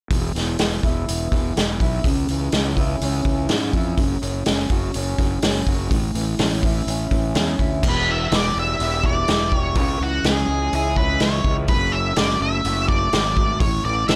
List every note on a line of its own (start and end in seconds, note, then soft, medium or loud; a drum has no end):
0.10 0.32 E1 medium
0.10 1.32 E2 medium
0.10 kick medium
0.10 open hi-hat medium
0.35 0.56 E1 medium
0.35 1.32 E3 medium
0.35 snare soft
0.35 open hi-hat soft
0.59 0.81 E1 medium
0.59 1.07 B3 medium
0.59 snare loud
0.59 open hi-hat medium
0.83 1.04 E1 medium
0.83 1.80 E4 medium
0.83 kick medium
0.83 open hi-hat soft
1.08 1.29 E1 medium
1.08 1.56 B3 medium
1.08 open hi-hat medium
1.32 1.53 E1 medium
1.32 2.05 E3 medium
1.32 kick medium
1.32 open hi-hat soft
1.56 1.77 E1 medium
1.56 2.05 B3 medium
1.56 snare loud
1.56 open hi-hat medium
1.80 2.01 B1 medium
1.80 2.05 E4 medium
1.80 kick medium
1.80 open hi-hat soft
2.04 2.25 C#2 medium
2.04 3.26 C#3 medium
2.04 kick loud
2.04 open hi-hat medium
2.29 2.50 C#2 medium
2.29 3.26 E3 medium
2.29 open hi-hat soft
2.52 2.94 C#2 medium
2.52 3.02 C#4 medium
2.52 snare loud
2.52 open hi-hat medium
2.77 3.74 E4 medium
2.77 kick medium
2.77 open hi-hat soft
3.01 3.22 C#2 medium
3.01 3.51 C#4 medium
3.01 open hi-hat medium
3.25 3.46 C#2 medium
3.25 3.99 E3 medium
3.25 kick medium
3.25 open hi-hat soft
3.49 3.70 G#2 medium
3.49 4.46 C#4 medium
3.49 snare medium
3.49 open hi-hat medium
3.73 3.94 F2 medium
3.73 3.99 E4 medium
3.73 kick medium
3.73 open hi-hat soft
3.97 4.19 F#1 medium
3.97 5.19 F#2 medium
3.97 kick medium
3.97 open hi-hat medium
4.22 4.43 F#1 medium
4.22 5.19 F#3 medium
4.22 open hi-hat soft
4.46 4.68 F#1 medium
4.46 4.94 C#4 medium
4.46 snare loud
4.46 open hi-hat medium
4.70 4.91 F#1 medium
4.70 5.67 F#4 medium
4.70 kick medium
4.70 open hi-hat soft
4.94 5.16 F#1 medium
4.94 5.42 C#4 medium
4.94 open hi-hat medium
5.18 5.39 F#1 medium
5.18 5.92 F#3 medium
5.18 kick medium
5.18 open hi-hat soft
5.42 5.63 F#1 medium
5.42 5.91 C#4 medium
5.42 snare loud
5.42 open hi-hat medium
5.67 5.88 F#1 medium
5.67 5.92 F#4 medium
5.67 kick medium
5.67 open hi-hat soft
5.91 6.12 A1 medium
5.91 7.12 A2 medium
5.91 kick loud
5.91 open hi-hat medium
6.15 6.36 A1 medium
6.15 7.11 E3 medium
6.15 open hi-hat soft
6.39 6.81 A1 medium
6.39 6.87 C#4 medium
6.39 snare loud
6.39 open hi-hat medium
6.63 7.58 E4 medium
6.63 kick medium
6.63 open hi-hat soft
6.87 7.08 A1 medium
6.87 7.34 C#4 medium
6.87 open hi-hat medium
7.11 7.32 A1 medium
7.11 7.85 E3 medium
7.11 kick medium
7.11 open hi-hat soft
7.35 7.56 E2 medium
7.35 7.84 C#4 medium
7.35 snare loud
7.35 open hi-hat medium
7.59 7.85 D2 medium
7.59 7.84 E4 medium
7.59 kick medium
7.59 open hi-hat soft
7.83 8.28 E1 medium
7.83 9.04 E2 medium
7.83 kick loud
7.83 crash medium
7.89 8.11 B4 medium
8.08 9.28 E3 medium
8.08 8.34 E5 medium
8.31 8.54 E1 medium
8.31 9.03 B3 medium
8.31 snare loud
8.31 open hi-hat medium
8.36 8.59 D5 medium
8.55 8.78 E1 medium
8.55 9.51 G3 medium
8.59 9.05 E5 loud
8.79 9.24 E1 medium
8.79 9.77 E4 medium
8.79 open hi-hat soft
9.04 9.77 B3 medium
9.04 9.57 D5 loud
9.04 kick medium
9.28 9.76 E1 medium
9.28 9.77 E3 medium
9.28 snare loud
9.28 open hi-hat soft
9.52 9.77 G3 medium
9.52 kick medium
9.57 9.78 C#5 loud
9.75 9.98 C#2 medium
9.75 10.97 C#3 medium
9.75 10.02 C#5 medium
9.75 kick loud
9.75 open hi-hat soft
10.00 10.22 C#2 medium
10.00 11.20 E3 medium
10.00 10.24 F#4 medium
10.23 10.46 C#2 medium
10.23 10.97 C#4 medium
10.23 10.74 G#4 medium
10.23 snare loud
10.23 open hi-hat soft
10.48 10.70 C#2 medium
10.48 11.45 G#3 medium
10.73 11.17 C#2 medium
10.73 11.70 E4 medium
10.73 10.97 G#4 medium
10.73 open hi-hat soft
10.96 14.10 C#4 medium
10.96 11.22 B4 medium
10.96 kick medium
11.20 11.43 C#2 medium
11.20 11.69 E3 medium
11.20 11.54 C#5 medium
11.20 snare loud
11.20 open hi-hat soft
11.44 11.66 C#2 medium
11.44 11.70 G#3 medium
11.44 kick medium
11.68 12.13 F#1 medium
11.68 12.90 F#2 medium
11.68 11.94 B4 medium
11.68 kick loud
11.68 open hi-hat soft
11.92 13.13 F#3 medium
11.92 12.17 E5 medium
12.16 12.39 F#1 medium
12.16 12.42 D5 medium
12.16 snare loud
12.16 open hi-hat medium
12.40 12.62 F#1 medium
12.40 13.37 A3 medium
12.40 12.88 E5 medium
12.65 13.09 F#1 medium
12.65 13.62 F#4 medium
12.65 open hi-hat soft
12.88 13.60 D5 medium
12.88 kick medium
13.13 13.57 G#1 medium
13.13 13.62 F#3 medium
13.13 snare loud
13.13 open hi-hat soft
13.37 13.62 A3 medium
13.37 kick medium
13.60 13.82 A1 medium
13.60 14.16 A2 medium
13.60 13.85 C#5 medium
13.60 kick loud
13.60 open hi-hat soft
13.84 14.07 A1 medium
13.84 14.16 E3 medium
13.84 14.08 D5 medium
14.08 14.16 A1 medium
14.08 14.16 C#4 medium
14.08 14.16 E5 medium
14.08 snare loud
14.08 open hi-hat medium